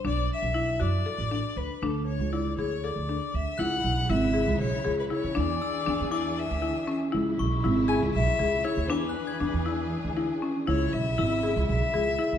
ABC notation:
X:1
M:7/8
L:1/16
Q:1/4=119
K:C#phr
V:1 name="Glockenspiel"
z12 z2 | z12 z2 | f'6 z8 | z2 e'4 d'6 z2 |
z2 c'6 z6 | d' f' g'6 z6 | z4 e'6 z4 |]
V:2 name="Violin"
d2 e4 d6 B2 | A2 c2 d2 c2 d4 e2 | f4 e4 c3 B c2 | d6 d2 e4 z2 |
z6 g2 e4 c2 | B8 z6 | c2 e6 e6 |]
V:3 name="Marimba"
D4 E2 F2 A2 D4 | D4 E2 G2 A2 D4 | E4 E2 G4 G2 E2 | D4 D2 E4 E2 C2 |
E4 E2 G4 G2 E2 | D4 D2 E4 E2 C2 | E4 E2 G4 G2 E2 |]
V:4 name="String section" clef=bass
z12 z2 | z12 z2 | [C,G,E]12- [C,G,E]2 | [E,DG]12- [E,DG]2 |
[C,G,E]12- [C,G,E]2 | [E,DG]12- [E,DG]2 | [C,G,E]12- [C,G,E]2 |]
V:5 name="Upright bass" clef=bass
B,,,2 z B,,,3 F,,2 z A,,,2 z D,, z | D,,3 C,,3 D,,3 D,,2 z D,, z | C,,2 B,,,2 G,,,3 C,, B,,, z C,,2 z C, | E,,2 z2 E,, E,,4 D,,2 z3 |
C,,2 B,,,2 G,,,3 C,, B,,, z C,,2 z D,, | E,,2 z2 E,, E,,4 D,,2 z3 | C,,2 B,,,2 G,,,3 C,, B,,, z C,,2 z D,, |]